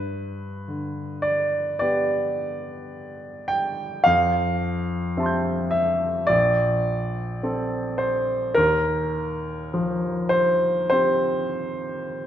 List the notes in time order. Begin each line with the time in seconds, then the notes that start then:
Already playing: G2 B4
0.68 D3
1.22 D5
1.79 B3 G4 D5
3.48 G5
4.04 F2 F5
5.17 C4 G4 E5 A5
5.23 C6 G6
5.71 E5
6.27 A#1 D5
7.43 C4 A4
7.98 C5
8.54 D#2 A#4
9.74 F3
10.29 C5
10.90 C4 G4 C5